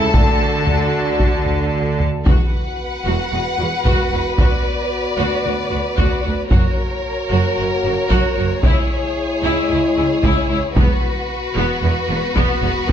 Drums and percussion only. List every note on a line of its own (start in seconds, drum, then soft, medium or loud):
0.14 taiko loud
0.67 taiko low medium
1.20 taiko medium
1.46 taiko low soft
2.00 taiko low soft
2.26 taiko loud
3.85 taiko medium
4.38 taiko medium
5.98 taiko medium
6.51 taiko medium
8.11 taiko medium
8.63 taiko medium
10.23 taiko medium
10.77 taiko loud
12.36 taiko medium
12.89 taiko loud